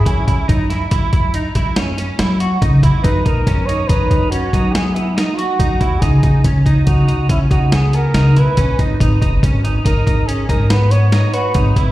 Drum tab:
HH |xxxxxxxxxxxxxx|xxxxxxxxxxxxxx|xxxxxxxxxxxxxx|xxxxxxxxxxxxxx|
SD |---o----ooo---|--o-----o-o---|--------o-o---|--------o-o---|
BD |ooo-oo-o----oo|ooo-oo-o----oo|ooooo-oo----oo|ooo-oo-o----oo|